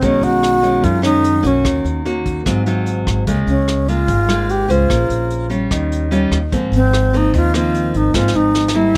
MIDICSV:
0, 0, Header, 1, 5, 480
1, 0, Start_track
1, 0, Key_signature, -4, "major"
1, 0, Tempo, 405954
1, 22, Time_signature, 4, 2, 24, 8
1, 10612, End_track
2, 0, Start_track
2, 0, Title_t, "Alto flute"
2, 0, Program_c, 0, 73
2, 64, Note_on_c, 0, 61, 102
2, 279, Note_on_c, 0, 66, 116
2, 297, Note_off_c, 0, 61, 0
2, 993, Note_on_c, 0, 65, 100
2, 1011, Note_off_c, 0, 66, 0
2, 1227, Note_off_c, 0, 65, 0
2, 1238, Note_on_c, 0, 63, 93
2, 1736, Note_on_c, 0, 61, 79
2, 1753, Note_off_c, 0, 63, 0
2, 2199, Note_off_c, 0, 61, 0
2, 4120, Note_on_c, 0, 61, 82
2, 4597, Note_on_c, 0, 65, 99
2, 4614, Note_off_c, 0, 61, 0
2, 5329, Note_on_c, 0, 67, 94
2, 5347, Note_off_c, 0, 65, 0
2, 5570, Note_on_c, 0, 65, 90
2, 5588, Note_off_c, 0, 67, 0
2, 6515, Note_off_c, 0, 65, 0
2, 7992, Note_on_c, 0, 60, 92
2, 8477, Note_on_c, 0, 63, 89
2, 8495, Note_off_c, 0, 60, 0
2, 8688, Note_off_c, 0, 63, 0
2, 8710, Note_on_c, 0, 65, 94
2, 8910, Note_off_c, 0, 65, 0
2, 8942, Note_on_c, 0, 65, 96
2, 9422, Note_on_c, 0, 63, 86
2, 9440, Note_off_c, 0, 65, 0
2, 9630, Note_on_c, 0, 65, 100
2, 9648, Note_off_c, 0, 63, 0
2, 9883, Note_on_c, 0, 63, 92
2, 9901, Note_off_c, 0, 65, 0
2, 10360, Note_on_c, 0, 64, 88
2, 10378, Note_off_c, 0, 63, 0
2, 10612, Note_off_c, 0, 64, 0
2, 10612, End_track
3, 0, Start_track
3, 0, Title_t, "Nylon-string guitar"
3, 0, Program_c, 1, 24
3, 15, Note_on_c, 1, 51, 52
3, 20, Note_on_c, 1, 47, 52
3, 28, Note_on_c, 1, 56, 51
3, 29, Note_on_c, 1, 61, 60
3, 700, Note_off_c, 1, 51, 0
3, 705, Note_off_c, 1, 56, 0
3, 707, Note_off_c, 1, 61, 0
3, 732, Note_on_c, 1, 51, 52
3, 740, Note_on_c, 1, 56, 49
3, 748, Note_on_c, 1, 61, 52
3, 957, Note_off_c, 1, 47, 0
3, 965, Note_on_c, 1, 42, 55
3, 1179, Note_off_c, 1, 51, 0
3, 1182, Note_off_c, 1, 56, 0
3, 1187, Note_off_c, 1, 61, 0
3, 1207, Note_on_c, 1, 51, 60
3, 1216, Note_on_c, 1, 56, 54
3, 1219, Note_on_c, 1, 61, 67
3, 1656, Note_off_c, 1, 51, 0
3, 1661, Note_off_c, 1, 56, 0
3, 1662, Note_off_c, 1, 61, 0
3, 1686, Note_on_c, 1, 58, 60
3, 1692, Note_on_c, 1, 61, 60
3, 1697, Note_on_c, 1, 66, 65
3, 1909, Note_off_c, 1, 42, 0
3, 1934, Note_on_c, 1, 51, 51
3, 2376, Note_off_c, 1, 58, 0
3, 2377, Note_off_c, 1, 61, 0
3, 2381, Note_off_c, 1, 66, 0
3, 2427, Note_on_c, 1, 58, 58
3, 2431, Note_on_c, 1, 61, 54
3, 2436, Note_on_c, 1, 66, 59
3, 2874, Note_off_c, 1, 51, 0
3, 2886, Note_off_c, 1, 58, 0
3, 2886, Note_off_c, 1, 61, 0
3, 2890, Note_off_c, 1, 66, 0
3, 2904, Note_on_c, 1, 54, 46
3, 2906, Note_on_c, 1, 44, 48
3, 2909, Note_on_c, 1, 60, 57
3, 2913, Note_on_c, 1, 65, 59
3, 3104, Note_off_c, 1, 54, 0
3, 3105, Note_off_c, 1, 60, 0
3, 3109, Note_off_c, 1, 65, 0
3, 3147, Note_on_c, 1, 54, 58
3, 3154, Note_on_c, 1, 60, 59
3, 3163, Note_on_c, 1, 65, 57
3, 3826, Note_off_c, 1, 54, 0
3, 3828, Note_off_c, 1, 60, 0
3, 3834, Note_off_c, 1, 65, 0
3, 3840, Note_off_c, 1, 44, 0
3, 3866, Note_on_c, 1, 49, 50
3, 3868, Note_on_c, 1, 56, 58
3, 3875, Note_on_c, 1, 58, 48
3, 3877, Note_on_c, 1, 65, 55
3, 4546, Note_off_c, 1, 56, 0
3, 4548, Note_off_c, 1, 58, 0
3, 4551, Note_off_c, 1, 65, 0
3, 4591, Note_on_c, 1, 56, 51
3, 4597, Note_on_c, 1, 58, 50
3, 4603, Note_on_c, 1, 65, 51
3, 4800, Note_off_c, 1, 49, 0
3, 4824, Note_on_c, 1, 44, 54
3, 5028, Note_off_c, 1, 56, 0
3, 5029, Note_off_c, 1, 58, 0
3, 5034, Note_off_c, 1, 65, 0
3, 5074, Note_on_c, 1, 56, 63
3, 5081, Note_on_c, 1, 58, 59
3, 5087, Note_on_c, 1, 65, 67
3, 5510, Note_off_c, 1, 56, 0
3, 5511, Note_off_c, 1, 58, 0
3, 5515, Note_off_c, 1, 65, 0
3, 5540, Note_on_c, 1, 61, 59
3, 5549, Note_on_c, 1, 68, 61
3, 5556, Note_on_c, 1, 72, 65
3, 5758, Note_off_c, 1, 44, 0
3, 5774, Note_on_c, 1, 58, 53
3, 6464, Note_off_c, 1, 61, 0
3, 6465, Note_off_c, 1, 68, 0
3, 6465, Note_off_c, 1, 72, 0
3, 6493, Note_off_c, 1, 58, 0
3, 6498, Note_on_c, 1, 55, 54
3, 6504, Note_on_c, 1, 61, 61
3, 6509, Note_on_c, 1, 65, 61
3, 6751, Note_on_c, 1, 51, 59
3, 7181, Note_off_c, 1, 55, 0
3, 7182, Note_off_c, 1, 61, 0
3, 7186, Note_off_c, 1, 65, 0
3, 7224, Note_on_c, 1, 55, 61
3, 7232, Note_on_c, 1, 61, 61
3, 7241, Note_on_c, 1, 65, 64
3, 7531, Note_off_c, 1, 55, 0
3, 7536, Note_off_c, 1, 61, 0
3, 7538, Note_off_c, 1, 65, 0
3, 7681, Note_off_c, 1, 51, 0
3, 7709, Note_on_c, 1, 44, 58
3, 7712, Note_on_c, 1, 53, 57
3, 7717, Note_on_c, 1, 60, 58
3, 7720, Note_on_c, 1, 58, 52
3, 8386, Note_off_c, 1, 53, 0
3, 8389, Note_off_c, 1, 58, 0
3, 8390, Note_off_c, 1, 60, 0
3, 8433, Note_on_c, 1, 53, 55
3, 8438, Note_on_c, 1, 58, 55
3, 8446, Note_on_c, 1, 60, 60
3, 8641, Note_off_c, 1, 44, 0
3, 8677, Note_on_c, 1, 51, 51
3, 8868, Note_off_c, 1, 53, 0
3, 8870, Note_off_c, 1, 58, 0
3, 8874, Note_off_c, 1, 60, 0
3, 8916, Note_on_c, 1, 53, 65
3, 8920, Note_on_c, 1, 58, 68
3, 8923, Note_on_c, 1, 60, 70
3, 9589, Note_off_c, 1, 53, 0
3, 9591, Note_off_c, 1, 58, 0
3, 9592, Note_off_c, 1, 60, 0
3, 9604, Note_off_c, 1, 51, 0
3, 9624, Note_on_c, 1, 44, 55
3, 9627, Note_on_c, 1, 53, 53
3, 9633, Note_on_c, 1, 58, 54
3, 9641, Note_on_c, 1, 60, 57
3, 10302, Note_off_c, 1, 53, 0
3, 10308, Note_off_c, 1, 58, 0
3, 10309, Note_off_c, 1, 60, 0
3, 10335, Note_on_c, 1, 55, 51
3, 10340, Note_on_c, 1, 58, 61
3, 10347, Note_on_c, 1, 64, 60
3, 10558, Note_off_c, 1, 44, 0
3, 10575, Note_on_c, 1, 48, 55
3, 10612, Note_off_c, 1, 48, 0
3, 10612, Note_off_c, 1, 55, 0
3, 10612, Note_off_c, 1, 58, 0
3, 10612, Note_off_c, 1, 64, 0
3, 10612, End_track
4, 0, Start_track
4, 0, Title_t, "Upright bass"
4, 0, Program_c, 2, 32
4, 33, Note_on_c, 2, 35, 79
4, 248, Note_off_c, 2, 35, 0
4, 255, Note_on_c, 2, 35, 77
4, 931, Note_off_c, 2, 35, 0
4, 991, Note_on_c, 2, 42, 89
4, 1659, Note_off_c, 2, 42, 0
4, 1704, Note_on_c, 2, 35, 81
4, 1926, Note_off_c, 2, 35, 0
4, 1953, Note_on_c, 2, 39, 80
4, 2171, Note_off_c, 2, 39, 0
4, 2181, Note_on_c, 2, 39, 74
4, 2854, Note_off_c, 2, 39, 0
4, 2911, Note_on_c, 2, 32, 88
4, 3579, Note_off_c, 2, 32, 0
4, 3631, Note_on_c, 2, 32, 79
4, 3850, Note_off_c, 2, 32, 0
4, 3875, Note_on_c, 2, 37, 89
4, 4092, Note_off_c, 2, 37, 0
4, 4101, Note_on_c, 2, 37, 78
4, 4774, Note_off_c, 2, 37, 0
4, 4825, Note_on_c, 2, 32, 93
4, 5496, Note_off_c, 2, 32, 0
4, 5537, Note_on_c, 2, 37, 81
4, 5762, Note_off_c, 2, 37, 0
4, 5799, Note_on_c, 2, 34, 91
4, 6014, Note_off_c, 2, 34, 0
4, 6023, Note_on_c, 2, 34, 80
4, 6694, Note_off_c, 2, 34, 0
4, 6750, Note_on_c, 2, 39, 90
4, 7418, Note_off_c, 2, 39, 0
4, 7464, Note_on_c, 2, 39, 81
4, 7685, Note_off_c, 2, 39, 0
4, 7716, Note_on_c, 2, 32, 81
4, 7932, Note_off_c, 2, 32, 0
4, 7943, Note_on_c, 2, 32, 89
4, 8614, Note_off_c, 2, 32, 0
4, 8679, Note_on_c, 2, 39, 94
4, 9342, Note_off_c, 2, 39, 0
4, 9385, Note_on_c, 2, 32, 78
4, 9606, Note_off_c, 2, 32, 0
4, 9629, Note_on_c, 2, 32, 85
4, 9847, Note_off_c, 2, 32, 0
4, 9861, Note_on_c, 2, 32, 84
4, 10532, Note_off_c, 2, 32, 0
4, 10612, End_track
5, 0, Start_track
5, 0, Title_t, "Drums"
5, 24, Note_on_c, 9, 42, 56
5, 30, Note_on_c, 9, 36, 56
5, 142, Note_off_c, 9, 42, 0
5, 149, Note_off_c, 9, 36, 0
5, 269, Note_on_c, 9, 42, 38
5, 387, Note_off_c, 9, 42, 0
5, 511, Note_on_c, 9, 37, 53
5, 511, Note_on_c, 9, 42, 38
5, 629, Note_off_c, 9, 37, 0
5, 629, Note_off_c, 9, 42, 0
5, 746, Note_on_c, 9, 42, 40
5, 865, Note_off_c, 9, 42, 0
5, 987, Note_on_c, 9, 42, 55
5, 990, Note_on_c, 9, 36, 51
5, 1105, Note_off_c, 9, 42, 0
5, 1108, Note_off_c, 9, 36, 0
5, 1222, Note_on_c, 9, 37, 55
5, 1222, Note_on_c, 9, 42, 43
5, 1341, Note_off_c, 9, 37, 0
5, 1341, Note_off_c, 9, 42, 0
5, 1468, Note_on_c, 9, 42, 46
5, 1586, Note_off_c, 9, 42, 0
5, 1705, Note_on_c, 9, 42, 45
5, 1823, Note_off_c, 9, 42, 0
5, 1949, Note_on_c, 9, 36, 59
5, 1952, Note_on_c, 9, 37, 54
5, 1952, Note_on_c, 9, 42, 59
5, 2067, Note_off_c, 9, 36, 0
5, 2070, Note_off_c, 9, 37, 0
5, 2070, Note_off_c, 9, 42, 0
5, 2191, Note_on_c, 9, 42, 38
5, 2309, Note_off_c, 9, 42, 0
5, 2432, Note_on_c, 9, 42, 39
5, 2550, Note_off_c, 9, 42, 0
5, 2669, Note_on_c, 9, 36, 46
5, 2669, Note_on_c, 9, 42, 41
5, 2787, Note_off_c, 9, 36, 0
5, 2787, Note_off_c, 9, 42, 0
5, 2910, Note_on_c, 9, 36, 50
5, 2911, Note_on_c, 9, 37, 55
5, 2911, Note_on_c, 9, 42, 50
5, 3028, Note_off_c, 9, 36, 0
5, 3030, Note_off_c, 9, 37, 0
5, 3030, Note_off_c, 9, 42, 0
5, 3148, Note_on_c, 9, 42, 37
5, 3266, Note_off_c, 9, 42, 0
5, 3382, Note_on_c, 9, 42, 41
5, 3501, Note_off_c, 9, 42, 0
5, 3629, Note_on_c, 9, 36, 50
5, 3632, Note_on_c, 9, 37, 53
5, 3632, Note_on_c, 9, 42, 40
5, 3747, Note_off_c, 9, 36, 0
5, 3750, Note_off_c, 9, 37, 0
5, 3750, Note_off_c, 9, 42, 0
5, 3864, Note_on_c, 9, 42, 47
5, 3869, Note_on_c, 9, 36, 53
5, 3983, Note_off_c, 9, 42, 0
5, 3988, Note_off_c, 9, 36, 0
5, 4106, Note_on_c, 9, 42, 34
5, 4225, Note_off_c, 9, 42, 0
5, 4350, Note_on_c, 9, 37, 53
5, 4350, Note_on_c, 9, 42, 42
5, 4468, Note_off_c, 9, 37, 0
5, 4468, Note_off_c, 9, 42, 0
5, 4591, Note_on_c, 9, 42, 39
5, 4710, Note_off_c, 9, 42, 0
5, 4825, Note_on_c, 9, 42, 52
5, 4828, Note_on_c, 9, 36, 51
5, 4943, Note_off_c, 9, 42, 0
5, 4947, Note_off_c, 9, 36, 0
5, 5070, Note_on_c, 9, 37, 57
5, 5070, Note_on_c, 9, 42, 45
5, 5188, Note_off_c, 9, 37, 0
5, 5188, Note_off_c, 9, 42, 0
5, 5310, Note_on_c, 9, 42, 41
5, 5428, Note_off_c, 9, 42, 0
5, 5552, Note_on_c, 9, 42, 39
5, 5671, Note_off_c, 9, 42, 0
5, 5794, Note_on_c, 9, 36, 52
5, 5795, Note_on_c, 9, 37, 54
5, 5795, Note_on_c, 9, 42, 55
5, 5912, Note_off_c, 9, 36, 0
5, 5914, Note_off_c, 9, 37, 0
5, 5914, Note_off_c, 9, 42, 0
5, 6029, Note_on_c, 9, 42, 41
5, 6147, Note_off_c, 9, 42, 0
5, 6271, Note_on_c, 9, 42, 42
5, 6389, Note_off_c, 9, 42, 0
5, 6513, Note_on_c, 9, 42, 39
5, 6631, Note_off_c, 9, 42, 0
5, 6751, Note_on_c, 9, 36, 47
5, 6752, Note_on_c, 9, 37, 52
5, 6752, Note_on_c, 9, 42, 46
5, 6869, Note_off_c, 9, 36, 0
5, 6870, Note_off_c, 9, 37, 0
5, 6870, Note_off_c, 9, 42, 0
5, 6998, Note_on_c, 9, 42, 37
5, 7116, Note_off_c, 9, 42, 0
5, 7233, Note_on_c, 9, 42, 39
5, 7351, Note_off_c, 9, 42, 0
5, 7470, Note_on_c, 9, 37, 53
5, 7470, Note_on_c, 9, 42, 35
5, 7588, Note_off_c, 9, 37, 0
5, 7588, Note_off_c, 9, 42, 0
5, 7714, Note_on_c, 9, 36, 53
5, 7715, Note_on_c, 9, 42, 49
5, 7833, Note_off_c, 9, 36, 0
5, 7833, Note_off_c, 9, 42, 0
5, 7956, Note_on_c, 9, 42, 37
5, 8074, Note_off_c, 9, 42, 0
5, 8200, Note_on_c, 9, 37, 53
5, 8200, Note_on_c, 9, 42, 39
5, 8318, Note_off_c, 9, 37, 0
5, 8318, Note_off_c, 9, 42, 0
5, 8442, Note_on_c, 9, 42, 38
5, 8560, Note_off_c, 9, 42, 0
5, 8676, Note_on_c, 9, 36, 54
5, 8682, Note_on_c, 9, 42, 50
5, 8795, Note_off_c, 9, 36, 0
5, 8800, Note_off_c, 9, 42, 0
5, 8916, Note_on_c, 9, 37, 55
5, 8916, Note_on_c, 9, 42, 42
5, 9035, Note_off_c, 9, 37, 0
5, 9035, Note_off_c, 9, 42, 0
5, 9158, Note_on_c, 9, 42, 42
5, 9276, Note_off_c, 9, 42, 0
5, 9391, Note_on_c, 9, 42, 44
5, 9509, Note_off_c, 9, 42, 0
5, 9626, Note_on_c, 9, 38, 39
5, 9628, Note_on_c, 9, 36, 55
5, 9745, Note_off_c, 9, 38, 0
5, 9747, Note_off_c, 9, 36, 0
5, 9789, Note_on_c, 9, 38, 33
5, 9908, Note_off_c, 9, 38, 0
5, 10106, Note_on_c, 9, 38, 36
5, 10224, Note_off_c, 9, 38, 0
5, 10267, Note_on_c, 9, 38, 46
5, 10385, Note_off_c, 9, 38, 0
5, 10612, End_track
0, 0, End_of_file